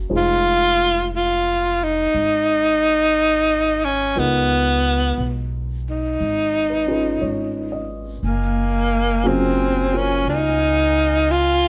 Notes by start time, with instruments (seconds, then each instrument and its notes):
Already playing: upright piano A#3 C#4 E4 F#4 G#4
0.09 upright bass F1, upright piano G#3 D#4 F4 G#4 C5
0.16 tenor saxophone F4
1.16 tenor saxophone F4
1.84 tenor saxophone D#4
2.14 upright bass G#1
3.85 tenor saxophone C#4
4.16 upright bass C#2, upright piano G#3 B3 D#4 F4 A#4, tenor saxophone B3
5.18 upright bass B1
5.90 tenor saxophone D#4
6.21 upright bass G#1
6.70 upright piano B4
6.87 upright piano C#4 F4 G#4 B4
7.21 upright bass G#1, upright piano C#5
7.72 upright piano D#5
8.23 upright bass F#1, saxophone section F4 A#4 G#5
8.27 tenor saxophone A#3
9.24 upright piano C#3 F#3 A#3 F4 G#4
9.28 tenor saxophone C4
9.93 upright piano F4 A#4 C5
9.97 tenor saxophone C#4
10.25 upright bass C#2
10.30 tenor saxophone D#4
11.31 tenor saxophone F4